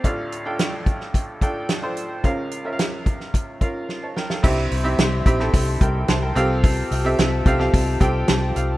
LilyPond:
<<
  \new Staff \with { instrumentName = "Flute section" } { \time 4/4 \key f \major \tempo 4 = 109 r1 | r1 | <g' e'' c'''>2.~ <g' e'' c'''>8 <f' g' a''>8~ | <f' g' a''>1 | }
  \new Staff \with { instrumentName = "Upright piano" } { \time 4/4 \key f \major << { r1 | r2. r16 <des'' a''>16 <bes' g''>16 <a' f''>16~ | <a' f''>16 r2 r16 <bes' g''>8 <c'' a''>16 <bes' g''>8 r16 | r2. a''8 f''8 | } \\ { <d' f' a' f''>8. <d' f' a' g''>4. r16 <d' f' a' g''>8. <d' f' a' c''>8. | <des' f' bes' f''>8. <des' f' bes' e'' f''>4. r16 <des' f' bes' f''>8. r8. | <c' e' g' e''>8. <c' e' g' e''>8. <c' e' g' e''>16 <c' e' g' a'>8. r4 <c' g' a' f''>8~ | <c' g' a' f''>8 r16 <c' g' a' e''>8. <c' g' a' f''>16 <c' g' a' f''>8. <c' g' a' g''>4~ <c' g' a' g''>16 r16 | } >> }
  \new Staff \with { instrumentName = "Upright piano" } { \clef bass \time 4/4 \key f \major <d, a,>1 | <des, des>1 | g,4. r2 c8~ | c4 r2. | }
  \new Staff \with { instrumentName = "Fingered electric bass" } { \clef bass \time 4/4 \key f \major r1 | r1 | c,8 c,8 c,8 bes,,8 c,8 c,8 c,8 c,8~ | c,8 c,8 c,8 c,8 c,8 c,8 c,8 c,8 | }
  \new DrumStaff \with { instrumentName = "Drums" } \drummode { \time 4/4 <hh bd>8 hh8 <hh sn>8 <hh bd>16 sn16 <hh bd>8 <hh bd>8 <hh sn>8 hh8 | <hh bd>8 hh8 <hh sn>8 <hh bd>16 sn16 <hh bd>8 <hh bd>8 sn8 sn16 sn16 | <cymc bd>8 <hho hhp>8 <hho hhp sn>8 <hho hhp bd>16 sn16 <hho hhp bd>8 <hho hhp bd>8 <hho hhp sn>8 <hho hhp>8 | <hho hhp bd>8 <hho hhp>8 <hho hhp sn>8 <hho hhp bd>16 sn16 <hho hhp bd>8 <hho hhp bd>8 <hho hhp sn>8 <hho hhp>8 | }
>>